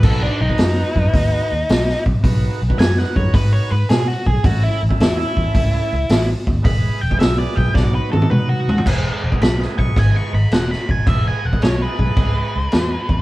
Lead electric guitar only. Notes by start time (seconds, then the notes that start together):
0.04 A4
0.23 D4
0.41 D#4
2.79 G#5
2.98 F#5
3.16 C#5
3.34 B4
3.53 C#5
3.70 B4
3.89 G#4
4.08 F#4
4.26 G#4
4.45 F#4
4.64 E4
5.01 E4
5.19 E4
6.65 B5
7.01 G5
7.19 E5
7.38 D5
7.56 G5
7.74 D5
7.95 B4
8.12 A4
8.30 B4
8.49 F#4
9.42 B5
9.79 C#6
9.99 G#5
10.16 C#6
10.34 B5
10.53 F#5
10.71 B5
10.91 G#5
11.07 E5
11.27 G#5
11.45 F#5
11.63 C#5
11.82 B4